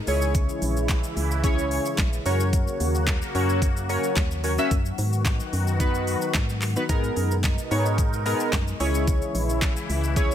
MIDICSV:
0, 0, Header, 1, 5, 480
1, 0, Start_track
1, 0, Tempo, 545455
1, 306, Time_signature, 4, 2, 24, 8
1, 9106, End_track
2, 0, Start_track
2, 0, Title_t, "Synth keys"
2, 0, Program_c, 0, 88
2, 66, Note_on_c, 0, 61, 85
2, 69, Note_on_c, 0, 64, 83
2, 69, Note_on_c, 0, 68, 85
2, 72, Note_on_c, 0, 73, 93
2, 837, Note_off_c, 0, 61, 0
2, 838, Note_off_c, 0, 64, 0
2, 839, Note_off_c, 0, 68, 0
2, 840, Note_off_c, 0, 73, 0
2, 1265, Note_on_c, 0, 61, 99
2, 1266, Note_on_c, 0, 64, 87
2, 1268, Note_on_c, 0, 68, 90
2, 1269, Note_on_c, 0, 73, 108
2, 1731, Note_off_c, 0, 61, 0
2, 1732, Note_off_c, 0, 64, 0
2, 1733, Note_off_c, 0, 68, 0
2, 1734, Note_off_c, 0, 73, 0
2, 1985, Note_on_c, 0, 61, 85
2, 1986, Note_on_c, 0, 66, 84
2, 1988, Note_on_c, 0, 70, 83
2, 1989, Note_on_c, 0, 73, 96
2, 2757, Note_off_c, 0, 61, 0
2, 2757, Note_off_c, 0, 66, 0
2, 2758, Note_off_c, 0, 70, 0
2, 2758, Note_off_c, 0, 73, 0
2, 2945, Note_on_c, 0, 61, 89
2, 2946, Note_on_c, 0, 66, 82
2, 2947, Note_on_c, 0, 70, 83
2, 2950, Note_on_c, 0, 73, 94
2, 3213, Note_off_c, 0, 61, 0
2, 3213, Note_off_c, 0, 66, 0
2, 3214, Note_off_c, 0, 70, 0
2, 3215, Note_off_c, 0, 73, 0
2, 3424, Note_on_c, 0, 61, 92
2, 3426, Note_on_c, 0, 66, 85
2, 3428, Note_on_c, 0, 70, 87
2, 3429, Note_on_c, 0, 73, 98
2, 3692, Note_off_c, 0, 61, 0
2, 3693, Note_off_c, 0, 66, 0
2, 3694, Note_off_c, 0, 70, 0
2, 3695, Note_off_c, 0, 73, 0
2, 3905, Note_on_c, 0, 61, 87
2, 3906, Note_on_c, 0, 66, 80
2, 3908, Note_on_c, 0, 70, 77
2, 3909, Note_on_c, 0, 73, 97
2, 3976, Note_off_c, 0, 61, 0
2, 3977, Note_off_c, 0, 66, 0
2, 3978, Note_off_c, 0, 70, 0
2, 3978, Note_off_c, 0, 73, 0
2, 4034, Note_on_c, 0, 61, 104
2, 4036, Note_on_c, 0, 66, 91
2, 4036, Note_on_c, 0, 70, 88
2, 4039, Note_on_c, 0, 76, 115
2, 4147, Note_off_c, 0, 61, 0
2, 4147, Note_off_c, 0, 66, 0
2, 4148, Note_off_c, 0, 70, 0
2, 4149, Note_off_c, 0, 76, 0
2, 5105, Note_on_c, 0, 59, 99
2, 5107, Note_on_c, 0, 63, 91
2, 5109, Note_on_c, 0, 66, 94
2, 5110, Note_on_c, 0, 71, 104
2, 5572, Note_off_c, 0, 59, 0
2, 5572, Note_off_c, 0, 63, 0
2, 5573, Note_off_c, 0, 66, 0
2, 5574, Note_off_c, 0, 71, 0
2, 5952, Note_on_c, 0, 59, 85
2, 5954, Note_on_c, 0, 63, 74
2, 5955, Note_on_c, 0, 66, 73
2, 5956, Note_on_c, 0, 71, 91
2, 6015, Note_off_c, 0, 59, 0
2, 6016, Note_off_c, 0, 63, 0
2, 6017, Note_off_c, 0, 66, 0
2, 6017, Note_off_c, 0, 71, 0
2, 6064, Note_on_c, 0, 59, 95
2, 6065, Note_on_c, 0, 63, 85
2, 6067, Note_on_c, 0, 68, 86
2, 6068, Note_on_c, 0, 70, 105
2, 6468, Note_off_c, 0, 59, 0
2, 6469, Note_off_c, 0, 63, 0
2, 6470, Note_off_c, 0, 68, 0
2, 6470, Note_off_c, 0, 70, 0
2, 6784, Note_on_c, 0, 59, 88
2, 6785, Note_on_c, 0, 63, 80
2, 6786, Note_on_c, 0, 68, 79
2, 6788, Note_on_c, 0, 73, 94
2, 7052, Note_off_c, 0, 59, 0
2, 7053, Note_off_c, 0, 63, 0
2, 7054, Note_off_c, 0, 68, 0
2, 7054, Note_off_c, 0, 73, 0
2, 7264, Note_on_c, 0, 59, 95
2, 7266, Note_on_c, 0, 63, 84
2, 7268, Note_on_c, 0, 68, 84
2, 7269, Note_on_c, 0, 70, 103
2, 7532, Note_off_c, 0, 59, 0
2, 7533, Note_off_c, 0, 63, 0
2, 7534, Note_off_c, 0, 68, 0
2, 7535, Note_off_c, 0, 70, 0
2, 7744, Note_on_c, 0, 61, 94
2, 7745, Note_on_c, 0, 64, 83
2, 7746, Note_on_c, 0, 68, 81
2, 7748, Note_on_c, 0, 73, 99
2, 8516, Note_off_c, 0, 61, 0
2, 8517, Note_off_c, 0, 64, 0
2, 8517, Note_off_c, 0, 68, 0
2, 8518, Note_off_c, 0, 73, 0
2, 8943, Note_on_c, 0, 61, 98
2, 8945, Note_on_c, 0, 64, 91
2, 8946, Note_on_c, 0, 68, 86
2, 8948, Note_on_c, 0, 73, 110
2, 9106, Note_off_c, 0, 61, 0
2, 9106, Note_off_c, 0, 64, 0
2, 9106, Note_off_c, 0, 68, 0
2, 9106, Note_off_c, 0, 73, 0
2, 9106, End_track
3, 0, Start_track
3, 0, Title_t, "Analog synth pad"
3, 0, Program_c, 1, 89
3, 0, Note_on_c, 1, 56, 76
3, 67, Note_on_c, 1, 49, 83
3, 67, Note_on_c, 1, 52, 74
3, 67, Note_on_c, 1, 64, 86
3, 1950, Note_off_c, 1, 56, 0
3, 1967, Note_off_c, 1, 52, 0
3, 1968, Note_off_c, 1, 64, 0
3, 1984, Note_on_c, 1, 66, 89
3, 1985, Note_on_c, 1, 54, 73
3, 1985, Note_on_c, 1, 58, 76
3, 4111, Note_off_c, 1, 49, 0
3, 4123, Note_off_c, 1, 66, 0
3, 4124, Note_off_c, 1, 58, 0
3, 4147, Note_on_c, 1, 66, 91
3, 4148, Note_on_c, 1, 51, 82
3, 4148, Note_on_c, 1, 59, 74
3, 6030, Note_off_c, 1, 54, 0
3, 6047, Note_off_c, 1, 66, 0
3, 6048, Note_off_c, 1, 51, 0
3, 6048, Note_off_c, 1, 59, 0
3, 6065, Note_on_c, 1, 47, 83
3, 6066, Note_on_c, 1, 56, 75
3, 6066, Note_on_c, 1, 63, 91
3, 6066, Note_on_c, 1, 70, 79
3, 7729, Note_off_c, 1, 47, 0
3, 7729, Note_off_c, 1, 63, 0
3, 7730, Note_off_c, 1, 70, 0
3, 7743, Note_on_c, 1, 64, 89
3, 7744, Note_on_c, 1, 49, 82
3, 7744, Note_on_c, 1, 52, 74
3, 9106, Note_off_c, 1, 49, 0
3, 9106, Note_off_c, 1, 52, 0
3, 9106, Note_off_c, 1, 56, 0
3, 9106, Note_off_c, 1, 64, 0
3, 9106, End_track
4, 0, Start_track
4, 0, Title_t, "FM bass"
4, 0, Program_c, 2, 39
4, 65, Note_on_c, 2, 37, 100
4, 433, Note_off_c, 2, 37, 0
4, 545, Note_on_c, 2, 34, 98
4, 913, Note_off_c, 2, 34, 0
4, 1026, Note_on_c, 2, 37, 87
4, 1578, Note_off_c, 2, 37, 0
4, 1746, Note_on_c, 2, 34, 91
4, 1930, Note_off_c, 2, 34, 0
4, 1986, Note_on_c, 2, 42, 104
4, 2354, Note_off_c, 2, 42, 0
4, 2467, Note_on_c, 2, 39, 97
4, 2834, Note_off_c, 2, 39, 0
4, 2947, Note_on_c, 2, 42, 90
4, 3499, Note_off_c, 2, 42, 0
4, 3665, Note_on_c, 2, 39, 89
4, 4034, Note_off_c, 2, 39, 0
4, 4146, Note_on_c, 2, 42, 96
4, 4330, Note_off_c, 2, 42, 0
4, 4387, Note_on_c, 2, 44, 97
4, 4754, Note_off_c, 2, 44, 0
4, 4866, Note_on_c, 2, 42, 90
4, 5418, Note_off_c, 2, 42, 0
4, 5585, Note_on_c, 2, 44, 95
4, 5954, Note_off_c, 2, 44, 0
4, 6066, Note_on_c, 2, 44, 104
4, 6250, Note_off_c, 2, 44, 0
4, 6307, Note_on_c, 2, 42, 90
4, 6675, Note_off_c, 2, 42, 0
4, 6786, Note_on_c, 2, 44, 93
4, 7338, Note_off_c, 2, 44, 0
4, 7506, Note_on_c, 2, 42, 91
4, 7690, Note_off_c, 2, 42, 0
4, 7746, Note_on_c, 2, 37, 106
4, 8114, Note_off_c, 2, 37, 0
4, 8226, Note_on_c, 2, 34, 90
4, 8594, Note_off_c, 2, 34, 0
4, 8707, Note_on_c, 2, 37, 91
4, 9106, Note_off_c, 2, 37, 0
4, 9106, End_track
5, 0, Start_track
5, 0, Title_t, "Drums"
5, 64, Note_on_c, 9, 46, 85
5, 64, Note_on_c, 9, 82, 63
5, 152, Note_off_c, 9, 46, 0
5, 152, Note_off_c, 9, 82, 0
5, 190, Note_on_c, 9, 82, 83
5, 278, Note_off_c, 9, 82, 0
5, 305, Note_on_c, 9, 36, 111
5, 305, Note_on_c, 9, 42, 74
5, 305, Note_on_c, 9, 82, 71
5, 393, Note_off_c, 9, 36, 0
5, 393, Note_off_c, 9, 42, 0
5, 393, Note_off_c, 9, 82, 0
5, 432, Note_on_c, 9, 82, 51
5, 520, Note_off_c, 9, 82, 0
5, 545, Note_on_c, 9, 46, 76
5, 545, Note_on_c, 9, 82, 54
5, 633, Note_off_c, 9, 46, 0
5, 633, Note_off_c, 9, 82, 0
5, 675, Note_on_c, 9, 82, 70
5, 763, Note_off_c, 9, 82, 0
5, 780, Note_on_c, 9, 38, 83
5, 785, Note_on_c, 9, 36, 111
5, 786, Note_on_c, 9, 42, 73
5, 786, Note_on_c, 9, 82, 74
5, 787, Note_on_c, 9, 39, 107
5, 868, Note_off_c, 9, 38, 0
5, 873, Note_off_c, 9, 36, 0
5, 874, Note_off_c, 9, 42, 0
5, 874, Note_off_c, 9, 82, 0
5, 875, Note_off_c, 9, 39, 0
5, 911, Note_on_c, 9, 82, 68
5, 999, Note_off_c, 9, 82, 0
5, 1028, Note_on_c, 9, 46, 77
5, 1028, Note_on_c, 9, 82, 53
5, 1116, Note_off_c, 9, 46, 0
5, 1116, Note_off_c, 9, 82, 0
5, 1153, Note_on_c, 9, 82, 71
5, 1241, Note_off_c, 9, 82, 0
5, 1264, Note_on_c, 9, 36, 121
5, 1267, Note_on_c, 9, 42, 78
5, 1267, Note_on_c, 9, 82, 76
5, 1352, Note_off_c, 9, 36, 0
5, 1355, Note_off_c, 9, 42, 0
5, 1355, Note_off_c, 9, 82, 0
5, 1396, Note_on_c, 9, 82, 60
5, 1484, Note_off_c, 9, 82, 0
5, 1506, Note_on_c, 9, 46, 77
5, 1506, Note_on_c, 9, 82, 55
5, 1594, Note_off_c, 9, 46, 0
5, 1594, Note_off_c, 9, 82, 0
5, 1632, Note_on_c, 9, 82, 82
5, 1720, Note_off_c, 9, 82, 0
5, 1739, Note_on_c, 9, 38, 98
5, 1746, Note_on_c, 9, 36, 105
5, 1746, Note_on_c, 9, 39, 120
5, 1746, Note_on_c, 9, 42, 70
5, 1746, Note_on_c, 9, 82, 72
5, 1827, Note_off_c, 9, 38, 0
5, 1834, Note_off_c, 9, 36, 0
5, 1834, Note_off_c, 9, 39, 0
5, 1834, Note_off_c, 9, 42, 0
5, 1834, Note_off_c, 9, 82, 0
5, 1874, Note_on_c, 9, 82, 58
5, 1962, Note_off_c, 9, 82, 0
5, 1986, Note_on_c, 9, 46, 86
5, 1986, Note_on_c, 9, 82, 62
5, 2074, Note_off_c, 9, 46, 0
5, 2074, Note_off_c, 9, 82, 0
5, 2112, Note_on_c, 9, 82, 84
5, 2200, Note_off_c, 9, 82, 0
5, 2227, Note_on_c, 9, 36, 111
5, 2228, Note_on_c, 9, 42, 77
5, 2228, Note_on_c, 9, 82, 78
5, 2315, Note_off_c, 9, 36, 0
5, 2316, Note_off_c, 9, 42, 0
5, 2316, Note_off_c, 9, 82, 0
5, 2354, Note_on_c, 9, 82, 49
5, 2442, Note_off_c, 9, 82, 0
5, 2467, Note_on_c, 9, 46, 80
5, 2467, Note_on_c, 9, 82, 55
5, 2555, Note_off_c, 9, 46, 0
5, 2555, Note_off_c, 9, 82, 0
5, 2594, Note_on_c, 9, 82, 70
5, 2682, Note_off_c, 9, 82, 0
5, 2701, Note_on_c, 9, 38, 81
5, 2706, Note_on_c, 9, 36, 106
5, 2707, Note_on_c, 9, 42, 73
5, 2707, Note_on_c, 9, 82, 72
5, 2708, Note_on_c, 9, 39, 107
5, 2789, Note_off_c, 9, 38, 0
5, 2794, Note_off_c, 9, 36, 0
5, 2795, Note_off_c, 9, 42, 0
5, 2795, Note_off_c, 9, 82, 0
5, 2796, Note_off_c, 9, 39, 0
5, 2833, Note_on_c, 9, 82, 67
5, 2921, Note_off_c, 9, 82, 0
5, 2948, Note_on_c, 9, 46, 73
5, 2948, Note_on_c, 9, 82, 51
5, 3036, Note_off_c, 9, 46, 0
5, 3036, Note_off_c, 9, 82, 0
5, 3073, Note_on_c, 9, 82, 68
5, 3161, Note_off_c, 9, 82, 0
5, 3185, Note_on_c, 9, 36, 115
5, 3188, Note_on_c, 9, 42, 81
5, 3188, Note_on_c, 9, 82, 74
5, 3273, Note_off_c, 9, 36, 0
5, 3276, Note_off_c, 9, 42, 0
5, 3276, Note_off_c, 9, 82, 0
5, 3315, Note_on_c, 9, 82, 58
5, 3403, Note_off_c, 9, 82, 0
5, 3427, Note_on_c, 9, 46, 73
5, 3427, Note_on_c, 9, 82, 52
5, 3515, Note_off_c, 9, 46, 0
5, 3515, Note_off_c, 9, 82, 0
5, 3551, Note_on_c, 9, 82, 79
5, 3639, Note_off_c, 9, 82, 0
5, 3659, Note_on_c, 9, 38, 94
5, 3665, Note_on_c, 9, 42, 73
5, 3665, Note_on_c, 9, 82, 72
5, 3666, Note_on_c, 9, 36, 100
5, 3666, Note_on_c, 9, 39, 115
5, 3747, Note_off_c, 9, 38, 0
5, 3753, Note_off_c, 9, 42, 0
5, 3753, Note_off_c, 9, 82, 0
5, 3754, Note_off_c, 9, 36, 0
5, 3754, Note_off_c, 9, 39, 0
5, 3794, Note_on_c, 9, 82, 57
5, 3882, Note_off_c, 9, 82, 0
5, 3905, Note_on_c, 9, 46, 84
5, 3905, Note_on_c, 9, 82, 61
5, 3993, Note_off_c, 9, 46, 0
5, 3993, Note_off_c, 9, 82, 0
5, 4031, Note_on_c, 9, 82, 84
5, 4119, Note_off_c, 9, 82, 0
5, 4146, Note_on_c, 9, 36, 106
5, 4146, Note_on_c, 9, 42, 75
5, 4146, Note_on_c, 9, 82, 75
5, 4234, Note_off_c, 9, 36, 0
5, 4234, Note_off_c, 9, 42, 0
5, 4234, Note_off_c, 9, 82, 0
5, 4273, Note_on_c, 9, 82, 52
5, 4361, Note_off_c, 9, 82, 0
5, 4385, Note_on_c, 9, 46, 75
5, 4385, Note_on_c, 9, 82, 58
5, 4473, Note_off_c, 9, 46, 0
5, 4473, Note_off_c, 9, 82, 0
5, 4513, Note_on_c, 9, 82, 72
5, 4601, Note_off_c, 9, 82, 0
5, 4619, Note_on_c, 9, 38, 81
5, 4625, Note_on_c, 9, 36, 109
5, 4626, Note_on_c, 9, 42, 78
5, 4626, Note_on_c, 9, 82, 77
5, 4627, Note_on_c, 9, 39, 102
5, 4707, Note_off_c, 9, 38, 0
5, 4713, Note_off_c, 9, 36, 0
5, 4714, Note_off_c, 9, 42, 0
5, 4714, Note_off_c, 9, 82, 0
5, 4715, Note_off_c, 9, 39, 0
5, 4751, Note_on_c, 9, 82, 67
5, 4839, Note_off_c, 9, 82, 0
5, 4867, Note_on_c, 9, 46, 73
5, 4867, Note_on_c, 9, 82, 51
5, 4955, Note_off_c, 9, 46, 0
5, 4955, Note_off_c, 9, 82, 0
5, 4992, Note_on_c, 9, 82, 68
5, 5080, Note_off_c, 9, 82, 0
5, 5104, Note_on_c, 9, 36, 113
5, 5106, Note_on_c, 9, 42, 77
5, 5106, Note_on_c, 9, 82, 74
5, 5192, Note_off_c, 9, 36, 0
5, 5194, Note_off_c, 9, 42, 0
5, 5194, Note_off_c, 9, 82, 0
5, 5233, Note_on_c, 9, 82, 59
5, 5321, Note_off_c, 9, 82, 0
5, 5344, Note_on_c, 9, 46, 75
5, 5344, Note_on_c, 9, 82, 51
5, 5432, Note_off_c, 9, 46, 0
5, 5432, Note_off_c, 9, 82, 0
5, 5469, Note_on_c, 9, 82, 82
5, 5557, Note_off_c, 9, 82, 0
5, 5577, Note_on_c, 9, 38, 97
5, 5584, Note_on_c, 9, 39, 121
5, 5584, Note_on_c, 9, 42, 73
5, 5584, Note_on_c, 9, 82, 74
5, 5585, Note_on_c, 9, 36, 104
5, 5665, Note_off_c, 9, 38, 0
5, 5672, Note_off_c, 9, 39, 0
5, 5672, Note_off_c, 9, 42, 0
5, 5672, Note_off_c, 9, 82, 0
5, 5673, Note_off_c, 9, 36, 0
5, 5714, Note_on_c, 9, 82, 57
5, 5802, Note_off_c, 9, 82, 0
5, 5823, Note_on_c, 9, 39, 70
5, 5825, Note_on_c, 9, 46, 88
5, 5825, Note_on_c, 9, 82, 62
5, 5911, Note_off_c, 9, 39, 0
5, 5913, Note_off_c, 9, 46, 0
5, 5913, Note_off_c, 9, 82, 0
5, 5950, Note_on_c, 9, 82, 85
5, 6038, Note_off_c, 9, 82, 0
5, 6065, Note_on_c, 9, 42, 76
5, 6065, Note_on_c, 9, 82, 74
5, 6066, Note_on_c, 9, 36, 115
5, 6153, Note_off_c, 9, 42, 0
5, 6153, Note_off_c, 9, 82, 0
5, 6154, Note_off_c, 9, 36, 0
5, 6193, Note_on_c, 9, 82, 50
5, 6281, Note_off_c, 9, 82, 0
5, 6305, Note_on_c, 9, 46, 78
5, 6305, Note_on_c, 9, 82, 56
5, 6393, Note_off_c, 9, 46, 0
5, 6393, Note_off_c, 9, 82, 0
5, 6434, Note_on_c, 9, 82, 73
5, 6522, Note_off_c, 9, 82, 0
5, 6540, Note_on_c, 9, 38, 82
5, 6545, Note_on_c, 9, 36, 110
5, 6547, Note_on_c, 9, 42, 74
5, 6547, Note_on_c, 9, 82, 75
5, 6548, Note_on_c, 9, 39, 101
5, 6628, Note_off_c, 9, 38, 0
5, 6633, Note_off_c, 9, 36, 0
5, 6635, Note_off_c, 9, 42, 0
5, 6635, Note_off_c, 9, 82, 0
5, 6636, Note_off_c, 9, 39, 0
5, 6672, Note_on_c, 9, 82, 67
5, 6760, Note_off_c, 9, 82, 0
5, 6787, Note_on_c, 9, 46, 77
5, 6787, Note_on_c, 9, 82, 53
5, 6875, Note_off_c, 9, 46, 0
5, 6875, Note_off_c, 9, 82, 0
5, 6913, Note_on_c, 9, 82, 67
5, 7001, Note_off_c, 9, 82, 0
5, 7024, Note_on_c, 9, 36, 110
5, 7027, Note_on_c, 9, 42, 79
5, 7027, Note_on_c, 9, 82, 81
5, 7112, Note_off_c, 9, 36, 0
5, 7115, Note_off_c, 9, 42, 0
5, 7115, Note_off_c, 9, 82, 0
5, 7155, Note_on_c, 9, 82, 55
5, 7243, Note_off_c, 9, 82, 0
5, 7267, Note_on_c, 9, 46, 74
5, 7267, Note_on_c, 9, 82, 53
5, 7355, Note_off_c, 9, 46, 0
5, 7355, Note_off_c, 9, 82, 0
5, 7391, Note_on_c, 9, 82, 80
5, 7479, Note_off_c, 9, 82, 0
5, 7500, Note_on_c, 9, 38, 101
5, 7506, Note_on_c, 9, 36, 104
5, 7507, Note_on_c, 9, 39, 126
5, 7507, Note_on_c, 9, 42, 72
5, 7507, Note_on_c, 9, 82, 76
5, 7588, Note_off_c, 9, 38, 0
5, 7594, Note_off_c, 9, 36, 0
5, 7595, Note_off_c, 9, 39, 0
5, 7595, Note_off_c, 9, 42, 0
5, 7595, Note_off_c, 9, 82, 0
5, 7635, Note_on_c, 9, 82, 57
5, 7723, Note_off_c, 9, 82, 0
5, 7746, Note_on_c, 9, 46, 84
5, 7746, Note_on_c, 9, 82, 62
5, 7834, Note_off_c, 9, 46, 0
5, 7834, Note_off_c, 9, 82, 0
5, 7872, Note_on_c, 9, 82, 86
5, 7960, Note_off_c, 9, 82, 0
5, 7986, Note_on_c, 9, 36, 114
5, 7987, Note_on_c, 9, 42, 75
5, 7987, Note_on_c, 9, 82, 76
5, 8074, Note_off_c, 9, 36, 0
5, 8075, Note_off_c, 9, 42, 0
5, 8075, Note_off_c, 9, 82, 0
5, 8113, Note_on_c, 9, 82, 50
5, 8201, Note_off_c, 9, 82, 0
5, 8227, Note_on_c, 9, 46, 74
5, 8227, Note_on_c, 9, 82, 57
5, 8315, Note_off_c, 9, 46, 0
5, 8315, Note_off_c, 9, 82, 0
5, 8355, Note_on_c, 9, 82, 73
5, 8443, Note_off_c, 9, 82, 0
5, 8461, Note_on_c, 9, 38, 86
5, 8465, Note_on_c, 9, 36, 114
5, 8468, Note_on_c, 9, 42, 76
5, 8468, Note_on_c, 9, 82, 78
5, 8469, Note_on_c, 9, 39, 108
5, 8549, Note_off_c, 9, 38, 0
5, 8553, Note_off_c, 9, 36, 0
5, 8556, Note_off_c, 9, 42, 0
5, 8556, Note_off_c, 9, 82, 0
5, 8557, Note_off_c, 9, 39, 0
5, 8592, Note_on_c, 9, 82, 69
5, 8680, Note_off_c, 9, 82, 0
5, 8709, Note_on_c, 9, 46, 73
5, 8709, Note_on_c, 9, 82, 53
5, 8797, Note_off_c, 9, 46, 0
5, 8797, Note_off_c, 9, 82, 0
5, 8833, Note_on_c, 9, 82, 71
5, 8921, Note_off_c, 9, 82, 0
5, 8944, Note_on_c, 9, 36, 121
5, 8946, Note_on_c, 9, 42, 76
5, 8946, Note_on_c, 9, 82, 81
5, 9032, Note_off_c, 9, 36, 0
5, 9034, Note_off_c, 9, 42, 0
5, 9034, Note_off_c, 9, 82, 0
5, 9075, Note_on_c, 9, 82, 58
5, 9106, Note_off_c, 9, 82, 0
5, 9106, End_track
0, 0, End_of_file